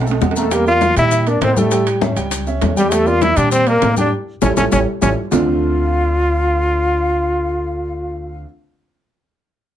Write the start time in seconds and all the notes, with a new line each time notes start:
Already playing: B1
0.01 low timbale
0.06 A3 A4 A5, high bongo, high conga, maracas
0.11 low timbale
0.21 E2 F#3 F#4 F#5, high bongo, low bongo, high conga, low timbale, maracas
0.31 low timbale
0.36 A3 A#3 A4 A#4 A#5, high bongo, maracas
0.42 low timbale
0.51 G3 A#3 G4 A#4 G5, high bongo, high conga, high timbale, maracas
0.66 A#3 F4 A#4 D5 F5, high conga, maracas
0.81 high bongo, high conga, high timbale, low timbale, maracas
0.96 A#2 G3 E4 G4 E5 G5, high conga, low conga, high timbale, maracas
1.11 high bongo, high conga, maracas
1.26 A#3 D4 A#4 D5, high conga, high timbale, maracas
1.41 A2 C4 C5, high bongo, low bongo, high conga, high timbale, low timbale, maracas
1.56 G3 A3 G4 A4 G5, high conga, maracas
1.71 G3 G4 G5, high bongo, high conga, high timbale, maracas
1.87 high bongo, high conga, high timbale, maracas
2.01 C#4 C#5 E5, high bongo, high conga, low timbale, maracas
2.16 C#2 G3 G4 G5, high timbale, maracas
2.31 high bongo, high conga, high timbale, maracas
2.47 C#4 C#5 E5, high bongo, high conga, maracas
2.62 E2, high bongo, low bongo, high conga, high timbale, low timbale, maracas
2.77 G3 G4 G5, high bongo, high conga, maracas
2.91 G3 A3 G4 A4 G5, high bongo, high conga, high timbale, maracas
3.06 A#3 F4 A#4 D5 F5, high conga, maracas
3.21 E4 E5, high bongo, high conga, high timbale, low timbale, maracas
3.36 A#2 G3 D4 G4 D5 G5, high conga, low conga, high timbale, maracas
3.51 C4 C5, high bongo, high conga, maracas
3.67 A#3 A#4 D5, high conga, high timbale, maracas
3.82 A2, high bongo, low bongo, high conga, high timbale, low timbale, maracas
3.97 G3 D4 G4 D5 G5, high conga, maracas
4.42 A1 C#4 E4 G4 A4 C#5, low bongo, high conga, high timbale, maracas
4.56 A1 C#4 E4 G4 A4 C#5, low bongo, high conga, high timbale, maracas
4.71 A1 C#4 E4 G4 A4 C#5, low bongo, high conga, high timbale, maracas
5.01 A1 C#4 E4 G4 A4 C#5, low bongo, high conga, high timbale, maracas
5.31 D2 D3 A3 C4 D4 F4 F5, low bongo, low conga, low timbale, maracas